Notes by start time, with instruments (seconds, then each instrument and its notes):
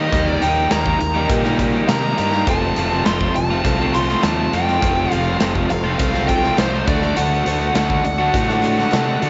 Already playing: overdriven electric guitar D#3, steel-string acoustic guitar A#3 D#4 G4, lead electric guitar D#5
0.00 overdriven electric guitar G3 A#3 D#4 G4
0.11 fingered electric bass D#2, overdriven electric guitar D#3 G3 A#3 D#4 G4, steel-string acoustic guitar G3, tonewheel organ D#4 G4 A#4, upright piano D#4 G4 A#4, kick, closed hi-hat
0.27 lead electric guitar D5
0.41 fingered electric bass D#2, overdriven electric guitar D#3 G3 A#3 D#4 G4, upright piano D#4 G4 A#4, lead electric guitar G5, closed hi-hat
0.69 fingered electric bass D#2, overdriven electric guitar D#3 G3 A#3 D#4 G4, steel-string acoustic guitar G3, upright piano D#4 G4 A#4, lead electric guitar A#5, snare, closed hi-hat
0.85 overdriven electric guitar G3 A#3 D#4 G4, kick
0.99 fingered electric bass D#2, steel-string acoustic guitar A#3 D#4 G4, upright piano D#4 G4 A#4, muted overdriven electric guitar stroke, closed hi-hat
1.15 overdriven electric guitar G3 A#3 D#4 G4
1.28 fingered electric bass A#2, steel-string acoustic guitar D#3 G3 A#3 D#4 G4, upright piano D#4 G4 A#4, kick, closed hi-hat
1.44 overdriven electric guitar G3 A#3 D#4 G4, snare
1.57 overdriven electric guitar D#3 A#3 D#4 G4, upright piano D#4 G4 A#4, kick, closed hi-hat
1.72 overdriven electric guitar A#3 D#4 G4
1.87 fingered electric bass C3, overdriven electric guitar D#3 G3 A#3 D#4 G4, steel-string acoustic guitar G3, upright piano D#4 G4 A#4, lead electric guitar A#5, snare, closed hi-hat
2.03 overdriven electric guitar G3 A#3 D#4
2.17 fingered electric bass G2, overdriven electric guitar D#3 G3 A#3 D#4 G4, upright piano D#4 G4 A#4, lead electric guitar A#5, closed hi-hat
2.31 overdriven electric guitar G3 A#3 D#4 G4, snare
2.45 fingered electric bass F1, overdriven electric guitar F2 C3 F3 A3 C4 F4, tonewheel organ C4 F4 A4, upright piano F4 A4 C5, steel-string acoustic guitar A4, lead electric guitar A5, kick, closed hi-hat
2.76 fingered electric bass F1, overdriven electric guitar F3 A3 C4 F4, upright piano F4 A4 C5, steel-string acoustic guitar A4, closed hi-hat
3.05 fingered electric bass F1, overdriven electric guitar F2 C3 F3 A3 C4 F4, upright piano F4 A4 C5, steel-string acoustic guitar A4, lead electric guitar C6, snare, clap, closed hi-hat
3.21 overdriven electric guitar F3 A3 C4 F4, kick
3.35 fingered electric bass F1, upright piano F4 A4 C5, steel-string acoustic guitar F4 A4, lead electric guitar A5, muted overdriven electric guitar stroke, closed hi-hat
3.39 steel-string acoustic guitar C4
3.49 overdriven electric guitar F3 A3 C4 F4
3.64 fingered electric bass C2, steel-string acoustic guitar F3 C4 F4 A4, upright piano F4 A4 C5, kick, closed hi-hat
3.78 overdriven electric guitar F3 A3 C4 F4
3.92 overdriven electric guitar F3 A3 C4 F4, upright piano F4 A4 C5, steel-string acoustic guitar A4, lead electric guitar C6, clap, closed hi-hat
4.08 overdriven electric guitar F3 A3 C4 F4, snare
4.22 fingered electric bass D#2, overdriven electric guitar F2 C3 F3 A3 C4 F4, upright piano F4 A4 C5, steel-string acoustic guitar A4, lead electric guitar A5, snare, clap, closed hi-hat
4.39 overdriven electric guitar A3 C4 F4
4.52 fingered electric bass F2, overdriven electric guitar F3 A3 C4 F4, upright piano F4 A4 C5, lead electric guitar G5, closed hi-hat
4.67 overdriven electric guitar F3 A3 C4 F4, snare
4.81 fingered electric bass F1, overdriven electric guitar F2 C3 F3 A3 C4 F4, tonewheel organ C4 F4 A4, upright piano F4 A4 C5, steel-string acoustic guitar A4, kick, closed hi-hat
5.10 fingered electric bass F1, overdriven electric guitar F3 A3 C4 F4, upright piano F4 A4 C5, steel-string acoustic guitar A4, lead electric guitar F5, closed hi-hat
5.40 fingered electric bass F1, overdriven electric guitar F2 C3 F3 A3 C4 F4, upright piano F4 A4 C5, steel-string acoustic guitar A4, snare, clap, closed hi-hat
5.55 overdriven electric guitar F3 A3 C4 F4, kick
5.69 fingered electric bass F1, steel-string acoustic guitar C4 F4 A4, upright piano F4 A4 C5, lead electric guitar F5, muted overdriven electric guitar stroke, closed hi-hat
5.84 overdriven electric guitar F3 A3 C4 F4
5.98 fingered electric bass C2, steel-string acoustic guitar F3 C4 F4 A4, upright piano F4 A4 C5, lead electric guitar F5, kick, closed hi-hat
6.13 overdriven electric guitar F3 A3 C4 F4, snare
6.27 overdriven electric guitar F3 A3 C4 F4, upright piano F4 A4 C5, steel-string acoustic guitar A4, lead electric guitar G5, kick, clap, closed hi-hat
6.43 overdriven electric guitar F3 A3 C4 F4, snare
6.56 fingered electric bass C2, overdriven electric guitar F2 C3 F3 A3 C4 F4, upright piano F4 A4 C5, lead electric guitar C5, snare, clap, closed hi-hat
6.61 steel-string acoustic guitar A4
6.72 overdriven electric guitar A3 C4 F4
6.85 fingered electric bass D2, overdriven electric guitar D3 A3 D4, tonewheel organ D4 F#4 A4, upright piano F#4 A4 D5, steel-string acoustic guitar A4, lead electric guitar D5, kick, closed hi-hat
6.89 overdriven electric guitar F#4
7.02 overdriven electric guitar A3 D4 F#4, snare
7.16 fingered electric bass D2, overdriven electric guitar D3 A3 D4 F#4, steel-string acoustic guitar A4, lead electric guitar F#5, closed hi-hat
7.44 fingered electric bass D2, overdriven electric guitar D3 A3 D4 F#4, upright piano F#4 A4 C5, steel-string acoustic guitar A4, closed hi-hat
7.73 fingered electric bass D2, overdriven electric guitar D3 A3 D4, upright piano F#4 A4 D5, lead electric guitar F#5, snare, clap, closed hi-hat
7.78 overdriven electric guitar F#4, steel-string acoustic guitar A4
7.90 overdriven electric guitar A3 D4 F#4, kick
8.01 upright piano F#4 A4 D5, steel-string acoustic guitar F#4 A4, closed hi-hat
8.05 fingered electric bass D2, steel-string acoustic guitar D4, lead electric guitar F#5, muted overdriven electric guitar stroke
8.19 overdriven electric guitar A3 D4 F#4
8.31 fingered electric bass A2, steel-string acoustic guitar D3 A3 D4 F#4 A4, upright piano F#4 A4 D5, kick, closed hi-hat
8.48 overdriven electric guitar A3 D4 F#4, snare
8.61 overdriven electric guitar D3 A3 D4, upright piano F#4 A4 D5, steel-string acoustic guitar A4, clap, closed hi-hat
8.65 overdriven electric guitar F#4
8.78 overdriven electric guitar A3 D4 F#4, snare
8.90 fingered electric bass C3, overdriven electric guitar D3 A3 D4 F#4, upright piano F#4 A4 D5, snare, clap, closed hi-hat
8.95 steel-string acoustic guitar A4
9.06 overdriven electric guitar A3 D4 F#4
9.20 overdriven electric guitar D3 A3 D4 F#4, fingered electric bass D3, upright piano F#4 A4 D5, tonewheel organ F#4 A4 D5, steel-string acoustic guitar A4, closed hi-hat